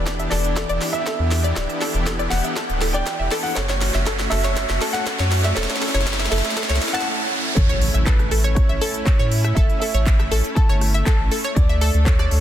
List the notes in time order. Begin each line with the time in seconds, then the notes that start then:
Already playing: E1 E3 B3 D4 E4 G4, riser
0.06 kick, snare, closed hi-hat
0.19 E5, closed hi-hat
0.30 E1 A4 D5, snare, open hi-hat
0.44 closed hi-hat
0.56 A4, kick, snare, closed hi-hat
0.69 E1 D5, closed hi-hat
0.81 snare, open hi-hat
0.93 E5, closed hi-hat
1.06 A4, kick, snare, closed hi-hat
1.19 E2
1.31 A4, snare, open hi-hat
1.43 D5, closed hi-hat
1.55 D1 D5, kick, snare, closed hi-hat
1.69 E5, closed hi-hat
1.81 A4, snare, open hi-hat
1.94 E1, closed hi-hat
2.06 A4, kick, snare, closed hi-hat
2.19 D5, closed hi-hat
2.30 E1 F#5, snare, open hi-hat
2.44 E5, closed hi-hat
2.56 A4, kick, snare, closed hi-hat
2.69 D1, closed hi-hat
2.81 A4, snare, open hi-hat
2.93 D5 G5, closed hi-hat
3.06 kick, snare, closed hi-hat
3.19 E1 E5
3.31 A4, snare, open hi-hat
3.43 F#5, open hi-hat
3.55 F#1 A3 C#4 F#4 A4 C#5, kick, snare, closed hi-hat
3.69 C#5, snare, closed hi-hat
3.81 snare, open hi-hat
3.94 F#1 E5, snare, closed hi-hat
4.06 A4, kick, snare, closed hi-hat
4.19 snare, closed hi-hat
4.30 F#1 A4 E5, snare, open hi-hat
4.44 C#5, snare, closed hi-hat
4.56 kick, snare, closed hi-hat
4.69 F#1 E5, snare, closed hi-hat
4.82 A4, snare, open hi-hat
4.93 F#5, snare, closed hi-hat
5.06 A4, kick, snare, closed hi-hat
5.19 F#2 C#5, snare
5.32 snare, open hi-hat
5.43 D5 E5, snare, closed hi-hat
5.55 E1 E4 A4 C#5, kick, snare, closed hi-hat
5.63 snare
5.70 snare, closed hi-hat
5.76 snare
5.82 A4, snare, open hi-hat
5.88 snare
5.94 F#1 C#5, snare, closed hi-hat
6.01 snare
6.07 kick, snare, closed hi-hat
6.13 snare
6.19 E5, snare, closed hi-hat
6.26 snare
6.30 F#1 A4 E5, snare, open hi-hat
6.38 snare
6.45 snare, closed hi-hat
6.50 snare
6.56 A4, kick, snare, closed hi-hat
6.63 snare
6.69 C#2 C#5, snare, closed hi-hat
6.76 snare
6.82 snare, open hi-hat
6.88 snare
6.93 F#5 A5, snare, closed hi-hat
7.00 snare
7.55 A1 A3 C#4 E4 A4 C#5, kick, closed hi-hat, impact
7.69 C#5, closed hi-hat
7.81 open hi-hat
7.94 A1 E5, closed hi-hat
8.05 A4 B4, kick, clap, closed hi-hat
8.19 cross-stick, closed hi-hat
8.31 A1 A4, open hi-hat
8.44 C#5, closed hi-hat
8.55 C#5, kick, cross-stick, closed hi-hat
8.69 A1 E5, closed hi-hat
8.81 A4, open hi-hat
8.94 closed hi-hat
9.05 A4 C#5, kick, clap, closed hi-hat
9.19 A2 C#5
9.32 open hi-hat
9.44 E5, cross-stick, closed hi-hat
9.55 G1 A4 E5, kick, closed hi-hat
9.70 closed hi-hat
9.80 A4 E5, open hi-hat
9.94 A1 C#5, closed hi-hat
10.06 kick, clap, closed hi-hat
10.19 E5, cross-stick, closed hi-hat
10.31 A1 A4, open hi-hat
10.44 closed hi-hat
10.55 A4 A5, kick, closed hi-hat
10.69 G1 C#5, closed hi-hat
10.81 cross-stick, open hi-hat
10.94 E5, closed hi-hat
11.05 A4 A5, kick, clap, closed hi-hat
11.19 A1
11.31 A4, open hi-hat
11.44 C#5, closed hi-hat
11.55 D2 D4 A4 D5, kick, closed hi-hat
11.69 E5, closed hi-hat
11.81 A4, open hi-hat
11.94 D2, closed hi-hat
12.05 A4 C#5, kick, clap, closed hi-hat
12.19 D5, cross-stick, closed hi-hat
12.31 D2, open hi-hat